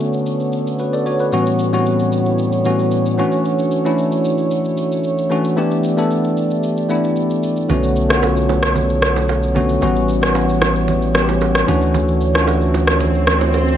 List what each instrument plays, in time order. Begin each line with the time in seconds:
Already playing: french horn section D3 B3 A4 C#5, tine electric piano D3 A3 B3 C#4 F#4
0.00 shaker
0.13 shaker
0.26 shaker
0.40 shaker
0.53 shaker
0.67 shaker
0.79 tine electric piano F#4 B4, shaker
0.93 tine electric piano A4 D5, shaker
1.06 tine electric piano F#4 C#5, shaker
1.20 tine electric piano F#4 B4, shaker
1.32 tine electric piano A2 E3 G3 B3 C#4 F#4, french horn section A2 G3 F#4, shaker
1.46 shaker
1.59 shaker
1.72 tine electric piano A2 E3 G3 B3 C4 F#4, shaker
1.80 tine electric piano C#4
1.86 shaker
2.00 shaker
2.12 shaker
2.26 shaker
2.39 shaker
2.52 shaker
2.64 tine electric piano A2 E3 G3 B3 C#4 F#4, shaker
2.79 shaker
2.91 shaker
3.06 shaker
3.17 french horn section D3 A3, tine electric piano E3 A3 C#4 D4 F#4, shaker
3.32 shaker
3.45 shaker
3.59 shaker
3.71 shaker
3.84 tine electric piano E3 A3 C#4 D4 E4, shaker
3.98 shaker
4.12 shaker
4.25 shaker
4.38 shaker
4.51 shaker
4.65 shaker
4.77 shaker
4.92 shaker
5.04 shaker
5.18 shaker
5.30 tine electric piano E3 A3 C#4 D4 F#4, shaker
5.44 shaker
5.56 tine electric piano E3 A3 B3 D4 G4, french horn section E4 G4 D5, shaker
5.71 shaker
5.84 shaker
5.97 tine electric piano E3 A3 B3 D4 A4, shaker
6.11 shaker
6.24 shaker
6.37 shaker
6.51 shaker
6.63 shaker
6.77 shaker
6.89 tine electric piano E3 A3 B3 D4 E4, shaker
7.04 shaker
7.16 shaker
7.30 shaker
7.43 shaker
7.57 shaker
7.69 sub bass B1, tine electric piano D3 A3 B3 C#4 F#4, french horn section D3 B3 A4 C#5, low conga, shaker
7.83 shaker
7.96 shaker
8.09 tine electric piano D3 A3 B3 C#4 F4, cross-stick, shaker
8.17 tine electric piano F#4
8.23 high bongo, shaker
8.37 shaker
8.49 low bongo, shaker
8.63 cross-stick, shaker
8.76 low conga, shaker
8.90 shaker
9.02 cross-stick, shaker
9.16 low bongo, shaker
9.29 high bongo, shaker
9.43 shaker
9.54 tine electric piano D3 A3 B3 C#4 F#4, low conga, shaker
9.69 shaker
9.81 sub bass A1, tine electric piano E3 G3 B3 C#4 F#4, french horn section G3 E4, low conga, shaker
9.96 shaker
10.09 shaker
10.21 tine electric piano E3 G3 B3 C#4 F#4, cross-stick, shaker
10.35 high bongo, shaker
10.49 shaker
10.62 cross-stick, low bongo, shaker
10.75 shaker
10.88 low conga, shaker
11.02 shaker
11.14 tine electric piano E3 G3 B3 C#4 F#4, cross-stick, shaker
11.22 tine electric piano G4
11.29 low bongo, shaker
11.41 high bongo, shaker
11.55 cross-stick, shaker
11.67 sub bass D2, french horn section D3 A3 F#4, tine electric piano E3 A3 C#4 D4 F#4, low conga, shaker
11.82 shaker
11.94 swell, low conga, shaker
12.08 shaker
12.21 shaker
12.34 tine electric piano E3 A3 C#4 D4 F4, cross-stick, shaker
12.42 tine electric piano F#4
12.47 high bongo, shaker
12.61 shaker
12.74 low bongo, shaker
12.87 cross-stick, shaker
13.00 low conga, shaker
13.14 shaker
13.27 cross-stick, shaker
13.41 low bongo, shaker
13.53 high bongo, shaker
13.68 shaker